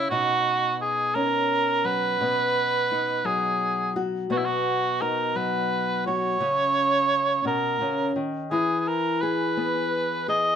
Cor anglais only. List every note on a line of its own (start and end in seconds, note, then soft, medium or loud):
0.10 0.76 F#4 loud
0.82 1.16 G#4 medium
1.15 1.87 A#4 medium
1.85 3.27 B4 loud
3.26 3.96 G#4 medium
4.32 4.39 F#4 medium
4.37 4.46 E4 medium
4.45 5.03 F#4 medium
5.01 5.38 A#4 medium
5.36 6.06 B4 medium
6.07 7.42 C#5 loud
7.47 8.12 A#4 medium
8.51 8.79 G#4 medium
8.79 8.89 G#4 medium
8.88 9.22 A#4 medium
9.21 10.26 B4 medium
10.29 10.56 D#5 loud